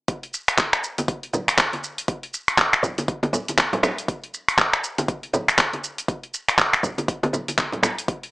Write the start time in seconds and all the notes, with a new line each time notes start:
0.08 kick, closed hi-hat, shaker
0.23 closed hi-hat
0.34 shaker
0.48 finger snap, closed hi-hat, shaker
0.58 kick, clap, closed hi-hat, shaker
0.73 finger snap, closed hi-hat
0.84 shaker
0.98 closed hi-hat, high conga, shaker
1.08 kick, closed hi-hat, shaker
1.23 closed hi-hat
1.33 high conga, low conga, shaker
1.48 finger snap, closed hi-hat, shaker
1.58 kick, clap, closed hi-hat
1.73 closed hi-hat, high conga
1.84 shaker
1.98 closed hi-hat, shaker
2.08 kick, closed hi-hat, shaker
2.23 closed hi-hat
2.34 shaker
2.48 finger snap, closed hi-hat, shaker
2.58 kick, clap, closed hi-hat, shaker
2.73 finger snap, closed hi-hat
2.83 kick, low conga, shaker
2.98 closed hi-hat, high conga, shaker
3.08 kick, closed hi-hat, shaker
3.23 closed hi-hat, high conga
3.33 high conga, low conga, shaker
3.48 closed hi-hat, high conga, shaker
3.58 kick, clap, closed hi-hat, high conga, shaker
3.73 closed hi-hat, low conga
3.83 finger snap, low conga, shaker
3.98 closed hi-hat, shaker
4.08 kick, closed hi-hat, shaker
4.24 closed hi-hat
4.34 shaker
4.48 finger snap, closed hi-hat, shaker
4.58 kick, clap, closed hi-hat, shaker
4.73 finger snap, closed hi-hat
4.84 shaker
4.98 closed hi-hat, high conga, shaker
5.08 kick, closed hi-hat, shaker
5.23 closed hi-hat
5.33 high conga, low conga, shaker
5.48 finger snap, closed hi-hat, shaker
5.58 kick, clap, closed hi-hat, shaker
5.73 closed hi-hat, high conga
5.84 shaker
5.98 closed hi-hat, shaker
6.08 kick, closed hi-hat, shaker
6.23 closed hi-hat
6.34 shaker
6.49 finger snap, closed hi-hat, shaker
6.58 kick, clap, closed hi-hat, shaker
6.73 finger snap, closed hi-hat
6.83 kick, low conga, shaker
6.98 closed hi-hat, high conga, shaker
7.08 kick, closed hi-hat, shaker
7.23 closed hi-hat, high conga
7.33 high conga, low conga, shaker
7.48 closed hi-hat, high conga, shaker
7.58 kick, clap, closed hi-hat, high conga, shaker
7.72 closed hi-hat, low conga
7.83 finger snap, low conga, shaker
7.98 closed hi-hat, shaker
8.08 kick, closed hi-hat, shaker
8.23 closed hi-hat